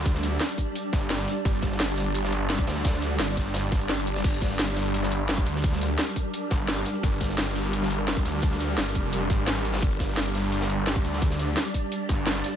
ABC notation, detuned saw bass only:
X:1
M:4/4
L:1/8
Q:1/4=172
K:Gm
V:1 name="Detuned saw bass" clef=bass
D,,2 z3 G,,,2 z | G,,,2 G,,,4- G,,, D,,- | D,,2 G,,,2 G,,,3 G,,, | G,,,2 G,,,4- G,,, D,,- |
D,,2 z3 G,,,2 z | G,,,2 G,,,4- G,,, D,,- | D,,2 G,,, F,,,2 _A,,,3 | G,,,2 G,,,4- G,,, D,,- |
D,,2 z3 G,,,2 z |]